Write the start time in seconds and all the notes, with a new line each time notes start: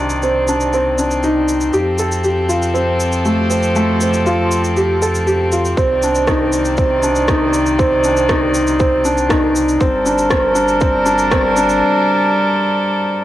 Already playing: C2 C3 D#3 C4 D4 D#4 G4 C5 D5
0.10 shaker
0.23 C4, shaker
0.48 D4, shaker
0.61 shaker
0.73 C4, shaker
0.98 D4, shaker
1.11 shaker
1.23 D#4, shaker
1.49 shaker
1.61 shaker
1.73 F2 F3 G4 A4, shaker
1.99 A4, shaker
2.12 shaker
2.24 G4, shaker
2.49 F4, shaker
2.62 shaker
2.74 C4, shaker
3.00 shaker
3.12 shaker
3.25 A3, shaker
3.50 C4, shaker
3.63 shaker
3.76 A3, shaker
4.01 C4, shaker
4.13 shaker
4.26 F4, shaker
4.51 shaker
4.64 shaker
4.77 G4, shaker
5.02 A4, shaker
5.15 shaker
5.27 G4, shaker
5.52 F4, shaker
5.65 shaker
5.77 C2 C3 D#3 C4 D5, kick, shaker
6.03 D4, shaker
6.15 shaker
6.27 D#4, kick, cross-stick, shaker
6.52 shaker
6.65 shaker
6.77 C4, kick, shaker
7.03 D4, shaker
7.16 shaker
7.28 D#4, kick, cross-stick, shaker
7.54 shaker
7.66 shaker
7.79 C4, kick, shaker
8.04 D4, shaker
8.17 shaker
8.29 D#4, kick, cross-stick, shaker
8.54 shaker
8.67 shaker
8.80 C4, kick, shaker
9.05 D4, shaker
9.18 shaker
9.29 D#4, kick, cross-stick, shaker
9.56 shaker
9.69 shaker
9.80 G1 G3 C4 D4 A4 A#4, kick, shaker
10.06 D4, shaker
10.18 shaker
10.30 C4, kick, cross-stick, shaker
10.55 D4, shaker
10.68 shaker
10.81 C4, kick, shaker
11.06 D4, shaker
11.18 shaker
11.31 C4, kick, cross-stick, shaker
11.57 D4, shaker
11.69 shaker